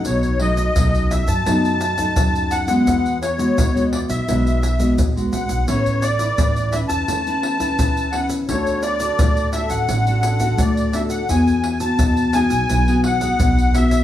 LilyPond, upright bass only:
\new Staff \with { instrumentName = "Upright bass" } { \clef bass \time 4/4 \key e \mixolydian \tempo 4 = 86 b,,4 b,,8. fis,16 fis,4 fis,4 | e,4 e,8. b,,16 b,,4 bes,,8 cis,16 b,,16 | a,,4 a,,8. e,16 e,4 cis,4 | d,4 d,8. a,,16 a,,4 d,4 |
e,4 e,8. b,,16 b,,4 b,,4 | }